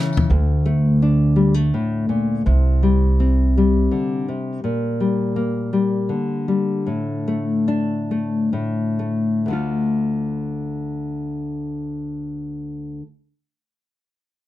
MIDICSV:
0, 0, Header, 1, 4, 480
1, 0, Start_track
1, 0, Key_signature, -1, "minor"
1, 0, Tempo, 721154
1, 201, Time_signature, 3, 2, 24, 8
1, 3562, Tempo, 757576
1, 4522, Tempo, 809717
1, 5002, Tempo, 859599
1, 5482, Tempo, 924499
1, 5962, Tempo, 964630
1, 8455, End_track
2, 0, Start_track
2, 0, Title_t, "Nylon-string guitar"
2, 0, Program_c, 0, 24
2, 0, Note_on_c, 0, 49, 60
2, 0, Note_on_c, 0, 52, 75
2, 0, Note_on_c, 0, 61, 59
2, 0, Note_on_c, 0, 64, 74
2, 173, Note_off_c, 0, 52, 0
2, 174, Note_off_c, 0, 61, 0
2, 174, Note_off_c, 0, 64, 0
2, 197, Note_on_c, 0, 38, 65
2, 198, Note_off_c, 0, 49, 0
2, 436, Note_on_c, 0, 57, 57
2, 681, Note_on_c, 0, 62, 58
2, 902, Note_off_c, 0, 57, 0
2, 905, Note_on_c, 0, 55, 54
2, 1027, Note_off_c, 0, 55, 0
2, 1027, Note_on_c, 0, 57, 44
2, 1157, Note_on_c, 0, 45, 52
2, 1388, Note_off_c, 0, 45, 0
2, 1391, Note_on_c, 0, 46, 54
2, 1609, Note_off_c, 0, 62, 0
2, 1631, Note_off_c, 0, 57, 0
2, 1634, Note_off_c, 0, 46, 0
2, 1635, Note_off_c, 0, 38, 0
2, 1637, Note_on_c, 0, 48, 61
2, 1883, Note_on_c, 0, 55, 52
2, 2129, Note_on_c, 0, 60, 53
2, 2377, Note_off_c, 0, 55, 0
2, 2380, Note_on_c, 0, 55, 55
2, 2605, Note_on_c, 0, 50, 58
2, 2837, Note_off_c, 0, 48, 0
2, 2841, Note_off_c, 0, 50, 0
2, 2852, Note_on_c, 0, 48, 49
2, 3055, Note_off_c, 0, 60, 0
2, 3084, Note_off_c, 0, 48, 0
2, 3087, Note_on_c, 0, 46, 58
2, 3323, Note_off_c, 0, 55, 0
2, 3331, Note_on_c, 0, 55, 52
2, 3568, Note_on_c, 0, 58, 56
2, 3793, Note_off_c, 0, 55, 0
2, 3801, Note_on_c, 0, 55, 47
2, 4031, Note_on_c, 0, 50, 50
2, 4037, Note_off_c, 0, 46, 0
2, 4269, Note_off_c, 0, 55, 0
2, 4277, Note_on_c, 0, 55, 45
2, 4495, Note_off_c, 0, 58, 0
2, 4521, Note_on_c, 0, 45, 54
2, 4523, Note_off_c, 0, 55, 0
2, 4764, Note_on_c, 0, 57, 49
2, 5002, Note_on_c, 0, 62, 56
2, 5237, Note_off_c, 0, 57, 0
2, 5244, Note_on_c, 0, 57, 46
2, 5455, Note_off_c, 0, 57, 0
2, 5471, Note_off_c, 0, 45, 0
2, 5477, Note_on_c, 0, 45, 60
2, 5482, Note_off_c, 0, 62, 0
2, 5718, Note_on_c, 0, 57, 43
2, 5932, Note_off_c, 0, 57, 0
2, 5960, Note_off_c, 0, 45, 0
2, 5961, Note_off_c, 0, 50, 0
2, 5961, Note_on_c, 0, 38, 46
2, 5972, Note_on_c, 0, 50, 48
2, 5984, Note_on_c, 0, 57, 38
2, 5995, Note_on_c, 0, 65, 41
2, 7721, Note_off_c, 0, 38, 0
2, 7733, Note_off_c, 0, 50, 0
2, 7744, Note_off_c, 0, 57, 0
2, 7755, Note_off_c, 0, 65, 0
2, 8455, End_track
3, 0, Start_track
3, 0, Title_t, "Upright bass"
3, 0, Program_c, 1, 32
3, 202, Note_on_c, 1, 38, 93
3, 1132, Note_off_c, 1, 38, 0
3, 1640, Note_on_c, 1, 36, 87
3, 2572, Note_off_c, 1, 36, 0
3, 8455, End_track
4, 0, Start_track
4, 0, Title_t, "Drums"
4, 84, Note_on_c, 9, 54, 25
4, 115, Note_on_c, 9, 43, 75
4, 151, Note_off_c, 9, 54, 0
4, 182, Note_off_c, 9, 43, 0
4, 8455, End_track
0, 0, End_of_file